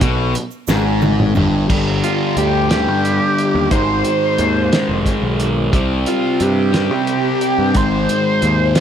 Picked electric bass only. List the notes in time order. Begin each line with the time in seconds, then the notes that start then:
0.01 B1
0.68 G#1
1.36 G1
1.70 G1
2.37 D2
2.88 G2
3.55 D#2
3.71 G#1
4.39 D#2
4.89 F1
5.22 B1
5.74 C2
6.41 G2
6.91 C3
7.59 G2
7.75 G#1
8.43 D#2